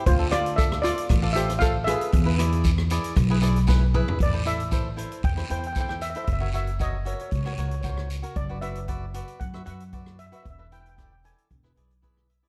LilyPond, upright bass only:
\new Staff \with { instrumentName = "Upright bass" } { \clef bass \time 4/4 \key e \phrygian \tempo 4 = 115 d,2 a,,2 | e,2 b,,2 | a,,2 e,8 e,4. | fis,,2 cis,8 cis,4. |
fis,,2 fis,8 fis,4. | e,,2 e,,8 b,,4. | }